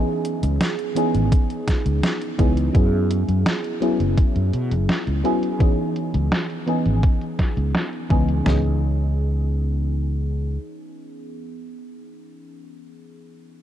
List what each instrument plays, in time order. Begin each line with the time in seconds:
Already playing: fm electric piano E3 B3 C#4 D#4 G#4
0.25 closed hi-hat
0.43 fretless electric bass C#2, closed hi-hat
0.61 snare, closed hi-hat
0.79 closed hi-hat
0.95 fm electric piano E3 B3 C#4 D#4 G#4, closed hi-hat
1.14 fretless electric bass G#1, closed hi-hat
1.32 kick, closed hi-hat
1.50 closed hi-hat
1.68 kick, snare, closed hi-hat
1.86 fretless electric bass C#2, closed hi-hat
2.03 snare, closed hi-hat
2.21 closed hi-hat
2.38 fretless electric bass C#2, fm electric piano E3 B3 C#4 D#4 G#4, kick, closed hi-hat
2.57 closed hi-hat
2.73 fretless electric bass F#2, fm electric piano F#3 B3 C#4 E4 G#4, kick, closed hi-hat
3.11 closed hi-hat
3.28 fretless electric bass F#2, closed hi-hat
3.46 snare, closed hi-hat
3.64 closed hi-hat
3.80 fm electric piano F#3 B3 C#4 E4 G#4, closed hi-hat
4.00 fretless electric bass F#1, closed hi-hat
4.18 muted fretless electric bass stroke, kick, closed hi-hat
4.36 fretless electric bass F#2, closed hi-hat
4.53 fretless electric bass B2, closed hi-hat
4.71 fretless electric bass F#1, closed hi-hat
4.89 snare, closed hi-hat
5.07 fretless electric bass C#2, closed hi-hat
5.24 fm electric piano F#3 B3 C#4 E4 G#4, closed hi-hat
5.43 closed hi-hat
5.59 fm electric piano E3 B3 C#4 D#4 G#4, kick, closed hi-hat
5.96 closed hi-hat
6.14 fretless electric bass C#2, closed hi-hat
6.32 snare, closed hi-hat
6.50 closed hi-hat
6.66 fm electric piano E3 B3 C#4 D#4 G#4, closed hi-hat
6.85 fretless electric bass G#1, closed hi-hat
7.03 kick, closed hi-hat
7.21 closed hi-hat
7.39 kick, snare, closed hi-hat
7.57 fretless electric bass C#2, closed hi-hat
7.75 snare, closed hi-hat
7.93 closed hi-hat
8.10 fretless electric bass C#2, fm electric piano E3 B3 C#4 D#4 G#4, kick, closed hi-hat
8.28 closed hi-hat
8.44 fretless electric bass C#2, fm electric piano E3 B3 C#4 D#4, snare, floor tom
8.48 fm electric piano G#4